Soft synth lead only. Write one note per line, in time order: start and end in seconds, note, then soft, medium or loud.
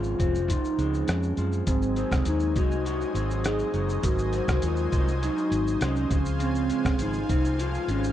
0.00 0.52 F4 loud
0.50 1.10 D#4 loud
1.09 1.53 C#4 loud
1.68 2.22 C4 loud
2.28 2.59 D#4 loud
2.57 3.47 F#4 loud
3.45 4.06 G#4 loud
4.05 4.66 F#4 loud
4.65 5.25 F4 loud
5.24 5.81 D#4 loud
5.82 6.23 C#4 loud
6.42 6.96 C4 loud
7.02 7.61 D#4 loud
7.60 7.91 F4 loud
7.90 8.12 C#4 medium